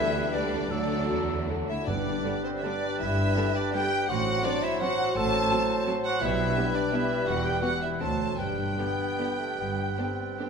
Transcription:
Already playing: D2 D3 G3 B3 D4 E4 G4 B4 E5 B5
0.14 G4
0.33 D3 G3 B3 D4 B4 D5 G5
0.53 C2 G4
0.70 D2 D3 F#3 A3 D4 A4
0.90 A3
1.09 E2 F#3 A4 D5
1.30 A4
1.50 F#3 A4 F#5
1.69 D2 E4 A4 E5
1.87 G1 G2 G3 D4 B4 D5
2.05 B3
2.24 D3 G3 B3 D4 D5
2.44 C4 B4 C5
2.57 E5
2.63 D3 G3 B3 D4 D5 G5
2.82 B4
3.00 G1 G2 E4 E5
3.18 B3
3.36 D3 G3 B3 D4 D5
3.55 D4 B4 D5
3.74 D3 G3 B3 D4 G4 G5
3.92 B4
4.08 A1 A2 F#3 F#4 C5 F#5
4.26 C4
4.45 F#3 C4 D4 C5 D5
4.63 E4 F#4 E5
4.81 F#3 C4 F#4 F#5
4.99 C5
5.16 A1 A2 A4 A5
5.33 C4
5.51 F#3 C4 C5
5.70 F#4
5.87 F#3 C4 F#5
6.04 F#4 C5 F#5
6.21 B1 B2 G3 E4 B4 E5
6.38 D4
6.55 G3 B3 D4 B4
6.74 D4 D5
6.92 G3 B3 D4 E4 E5
7.11 D5
7.26 E1 E2 E3 F#4 F#5
7.44 B3 G4 G5
7.62 G3 B3 E4 F#4 F#5
7.81 E4 G4 E5
8.00 D2 D3 F#3 C4 D4 F#4 A4 C5 A5
8.21 F#4 C5
8.38 G1 G2 G3 G4 B4 G5
8.58 D4
8.78 D3 B3 D4 G4
8.99 D5
9.19 D3 B3 D4 G4 G5
9.40 A3
9.58 G1 G2 B3
9.79 D4
9.98 D3 B3 C4 D4 G4 B4
10.19 D5
10.39 D3 B3 D4 G4 G5

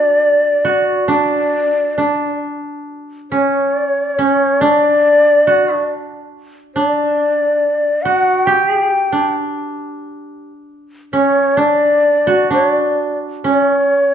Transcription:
Already playing: D4 F#4 D5
0.65 F#4
1.08 D4 D5
1.98 D4
3.31 C#4 C#5
4.18 C#4
4.61 D4 D5
5.47 F#4
5.74 D4
6.75 D4 D5
8.02 F#4 F#5
8.45 G4 G5
9.12 D4
11.13 C#4 C#5
11.57 D4 D5
12.27 F#4
12.50 D4 C#5
12.69 D5
13.44 C#4 C#5

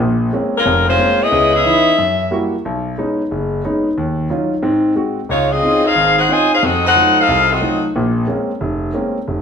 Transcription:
0.00 A#1 A#2
0.33 G#3 A#3 C4 C#4
0.57 G#3 C#4 F4 A#4
0.66 F1 F2
0.88 G#3 C#4 F4 C5
0.98 G#3 A#3 C4 C#4
1.21 B3 E4 G#4 D#5
1.32 C#2 C#3
1.53 B3 G#4 D#5 E5
1.65 E3 B3 C#4 D#4
1.98 F#2
2.31 G3 A#3 E4 F#4
2.65 B1
2.98 G#3 B3 C#4 D#4
3.31 F#1
3.64 G#3 B3 C#4 D#4
3.98 D#2
4.30 F#3 C#4 D#4 F4
4.63 G#2 C4
4.96 G#3 C4 F#4
5.29 C#2 G#3 D#4 F4 C#5
5.51 C4 F4 G#4 D#5
5.63 C4 C#4 D#4 F4
5.85 D#4 G#4 C5 F5
5.95 G#1
6.18 D#4 G#4 C5 F#5
6.29 C4 C#4 D#4 F4 C5 D#5 G#5
6.52 D#4 G#4 C5 F5
6.63 F2 C4 F#4 A4 D#5
6.86 D#4 A4 C5 F#5
6.96 F#3 A3 D#4 F4
7.19 D#4 A4 C5 F5
7.28 C2
7.51 C4 F#4 A4 D#5
7.61 F#3 A3 D#4 F4
7.96 A#1 A#2
8.27 G#3 A#3 C4 C#4
8.61 F1
8.94 G#3 A#3 C4 C#4
9.28 F1

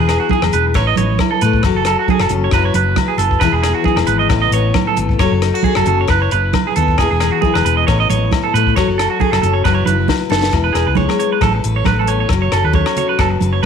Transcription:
Already playing: E3 E4 G#4
0.00 E1
0.07 B3 G#4, cross-stick, closed hi-hat, muted conga, low agogo
0.20 F#4
0.29 E4 G#4, kick, high conga
0.42 E1, muted clean electric guitar stroke, cross-stick, low agogo
0.52 E1 G#3 B4, closed hi-hat
0.74 A1 E4 B4 C#5, muted steel-string acoustic guitar stroke, kick, cross-stick, muted conga, low agogo
0.87 D#5
0.96 A1 B3 C#5, closed hi-hat, high conga
1.19 E4, kick, cross-stick, high conga, low agogo
1.31 A4
1.41 A2 A3 B4, closed hi-hat, muted conga
1.53 kick
1.63 F#1 F#3 F#4 A4, muted clean electric guitar stroke, kick, cross-stick, muted conga, low agogo
1.75 F#1 A4
1.85 F#4 A4, cross-stick, closed hi-hat, muted conga, low agogo
1.99 F#4
2.08 G#4 A4, kick, high conga
2.20 F#1 A4, cross-stick, low agogo
2.29 F#1 C#4, closed hi-hat, low conga
2.44 C#5
2.51 F#1 F#3 E4 B4, kick, cross-stick, muted conga, low agogo
2.65 C#5
2.74 F#1 E4 B4, closed hi-hat, high conga
2.96 B4, kick, cross-stick, high conga, low conga, low agogo
3.08 G#4
3.18 F#1 B3 A4, closed hi-hat, muted conga
3.31 kick
3.40 E1 E3 E4 B4, muted steel-string acoustic guitar stroke, kick, cross-stick, muted conga, low agogo
3.44 G#4
3.52 E1 G#4
3.62 B3 G#4, cross-stick, closed hi-hat, muted conga, low agogo
3.75 F#4
3.84 E4 G#4, kick, high conga
3.96 E1, muted clean electric guitar stroke, cross-stick, low agogo
4.07 G#1 G#3 B4, closed hi-hat
4.19 D#5
4.29 A1 A2 B3 E4 B4, muted clean electric guitar stroke, kick, cross-stick, muted conga, low agogo
4.42 D#5
4.51 A1 B3 C#5, closed hi-hat
4.74 E4, kick, cross-stick, high conga, low agogo
4.87 A4
4.96 G#1 A3, closed hi-hat, muted conga
5.09 kick
5.18 F#1 F#3 A4 C#5, muted steel-string acoustic guitar stroke, kick, cross-stick, muted conga, low agogo
5.32 F#1
5.41 D#4, cross-stick, closed hi-hat, muted conga, low agogo
5.54 F#4
5.63 G#4 A4, kick, high conga
5.75 F#1 A4, cross-stick, low agogo
5.86 F#1 C#4 A4, closed hi-hat, low conga
6.01 C#5
6.08 F#1 E4 B4, muted steel-string acoustic guitar stroke, kick, cross-stick, muted conga, low agogo
6.22 C#5
6.31 F#1 E4 B4, closed hi-hat
6.53 B4, kick, cross-stick, high conga, low conga, low agogo
6.67 G#4
6.76 D#2 B3 A4, closed hi-hat, muted conga
6.88 kick
6.98 E1 E3 B3 E4 G#4, kick, cross-stick, muted conga, low agogo
7.02 G#4
7.11 E1 G#4
7.20 B3 G#4, cross-stick, closed hi-hat, muted conga, low agogo
7.32 F#4
7.41 E4 G#4, kick, high conga
7.54 E1 B4, cross-stick, low agogo
7.65 E1 G#3 B4, closed hi-hat
7.77 D#5
7.87 A1 A2 B3 E4 C#5, muted steel-string acoustic guitar stroke, kick, cross-stick, muted conga, low agogo
8.00 D#5
8.10 A1 B3 C#5, closed hi-hat, high conga
8.31 E4, kick, cross-stick, high conga, low agogo
8.43 A4
8.54 A2 A3 B4, closed hi-hat
8.67 kick
8.76 F#1 F#3 F#4 A4 C#5, kick, cross-stick, muted conga, low agogo
8.88 F#1
8.98 F#4 A4, cross-stick, closed hi-hat, muted conga, low agogo
9.10 F#4
9.20 G#4 A4, kick, high conga
9.32 F#1 A4, cross-stick, low agogo
9.42 F#1 C#4 A4, closed hi-hat, low conga
9.53 C#5
9.64 F#1 F#3 E4 B4, kick, cross-stick, muted conga, low agogo
9.75 C#5
9.86 F#1 E4 B4, closed hi-hat, high conga
10.08 B4, kick, snare, high conga, low conga, low agogo
10.30 F#1 B3 A4, snare, muted conga
10.43 snare
10.52 E1 E4, muted steel-string acoustic guitar stroke, kick, cross-stick, muted conga, low agogo
10.64 B4
10.73 E1 G#4 B4, cross-stick, closed hi-hat, low agogo
10.87 C#2 B4
10.95 G#3 C#5, kick, high conga
11.09 cross-stick, low agogo
11.19 B3 C#5, closed hi-hat
11.32 B4
11.41 A1 A2 A3 E4 A4 B4, muted steel-string acoustic guitar stroke, kick, cross-stick, muted conga, high conga, low agogo
11.55 muted clean electric guitar stroke
11.63 A1 B4, closed hi-hat, muted conga
11.76 C#5
11.85 A1 A3 B4, kick, cross-stick, high conga, low agogo
11.99 A4
12.07 B3 C#5, closed hi-hat, muted conga
12.20 C#5
12.29 F#1 F#3, kick, cross-stick, muted conga, low agogo
12.33 muted steel-string acoustic guitar stroke
12.42 C#5
12.52 F#1 A4, cross-stick, closed hi-hat, low agogo
12.64 D#2 B4
12.73 C#4 C#5, kick, high conga
12.86 cross-stick, low agogo
12.97 F#4 C#5, closed hi-hat, low conga
13.09 B4
13.19 F#1 F#3 A4 B4, kick, cross-stick, muted conga, low agogo
13.30 muted clean electric guitar stroke
13.41 F#1 B4, closed hi-hat, muted conga, high conga
13.53 C#5

